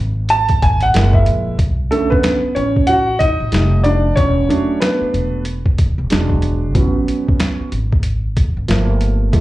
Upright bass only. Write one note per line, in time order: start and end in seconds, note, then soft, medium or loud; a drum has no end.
0.00 0.59 G#1 medium
0.63 0.92 G#1 medium
0.95 1.24 F#1 loud
1.27 1.56 A#1 medium
1.59 1.88 B1 medium
2.43 muted upright bass stroke soft
2.56 3.36 A1 medium
3.40 3.54 A1 medium
3.52 4.13 F1 loud
4.17 4.47 E1 medium
5.01 muted upright bass stroke soft
5.14 5.94 E1 medium
5.98 6.10 E1 medium
6.11 6.75 E1 medium
6.75 7.05 A1 medium
7.60 muted upright bass stroke soft
7.72 8.52 G#1 medium
8.57 8.68 G#1 medium
8.69 9.29 G1 medium